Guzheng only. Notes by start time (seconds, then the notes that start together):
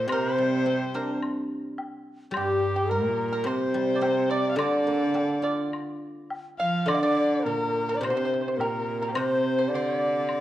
0.08 C3
0.38 G3
0.66 C4
0.94 D4
2.31 G3
3.44 C3
3.74 G3
4.01 C4
4.56 D3
4.87 A#3
5.14 D4
5.42 F4
6.86 D3
8.01 C3
9.15 C3